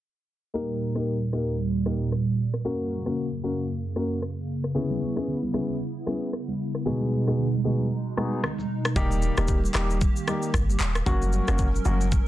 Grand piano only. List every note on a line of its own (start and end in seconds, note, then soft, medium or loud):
0.54 0.92 A#3 medium
0.54 0.92 D#4 medium
0.54 0.92 G4 medium
0.54 0.92 A#4 loud
0.95 1.14 A#3 medium
0.95 1.14 D#4 medium
0.95 1.14 G4 medium
0.95 1.15 A#4 medium
1.33 1.54 A#3 medium
1.33 1.54 D#4 medium
1.33 1.54 G4 medium
1.33 1.54 A#4 medium
1.86 2.06 A#3 medium
1.86 2.06 D#4 medium
1.86 2.07 G4 medium
1.86 2.07 A#4 medium
2.65 3.02 A#3 medium
2.65 3.03 C#4 medium
2.65 3.03 F#4 medium
2.65 3.03 A#4 loud
3.06 3.25 A#3 medium
3.06 3.25 C#4 medium
3.06 3.25 F#4 medium
3.06 3.25 A#4 medium
3.43 3.64 A#3 medium
3.43 3.64 C#4 medium
3.43 3.64 F#4 medium
3.43 3.65 A#4 medium
3.96 4.17 A#3 medium
3.96 4.17 C#4 medium
3.96 4.17 F#4 medium
3.96 4.17 A#4 medium
4.75 5.13 B3 medium
4.75 5.13 C#4 medium
4.75 5.13 E4 medium
4.75 5.13 G#4 loud
5.16 5.35 B3 medium
5.16 5.35 C#4 medium
5.16 5.35 E4 medium
5.16 5.35 G#4 medium
5.53 5.74 B3 medium
5.53 5.75 C#4 medium
5.53 5.75 E4 medium
5.53 5.75 G#4 medium
6.06 6.27 B3 medium
6.06 6.27 C#4 medium
6.06 6.27 E4 medium
6.06 6.28 G#4 medium
6.86 7.23 B2 medium
6.86 7.24 G#3 medium
6.86 7.24 B3 medium
6.86 7.24 D#4 medium
6.86 7.24 G#4 loud
7.27 7.46 B2 medium
7.27 7.46 G#3 medium
7.27 7.46 B3 medium
7.27 7.46 D#4 medium
7.27 7.46 G#4 medium
7.64 7.85 B2 medium
7.64 7.85 G#3 medium
7.64 7.85 B3 medium
7.64 7.85 D#4 medium
7.64 7.85 G#4 medium
8.17 8.38 B2 medium
8.17 8.38 G#3 medium
8.17 8.38 B3 medium
8.17 8.38 D#4 medium
8.17 8.38 G#4 medium
8.96 9.34 G3 medium
8.96 9.34 A#3 medium
8.96 9.34 D#4 medium
8.96 9.34 G4 loud
9.37 9.56 G3 medium
9.37 9.56 A#3 medium
9.37 9.56 D#4 medium
9.37 9.57 G4 medium
9.75 9.96 G3 medium
9.75 9.96 A#3 medium
9.75 9.96 D#4 medium
9.75 9.96 G4 medium
10.27 10.48 G3 medium
10.27 10.48 A#3 medium
10.27 10.48 D#4 medium
10.27 10.49 G4 medium
11.06 11.44 F#3 medium
11.06 11.44 A#3 medium
11.06 11.44 C#4 medium
11.06 11.45 F#4 loud
11.48 11.67 F#3 medium
11.48 11.67 A#3 medium
11.48 11.67 C#4 medium
11.48 11.67 F#4 medium
11.85 12.06 F#3 medium
11.85 12.06 A#3 medium
11.85 12.06 C#4 medium
11.85 12.06 F#4 medium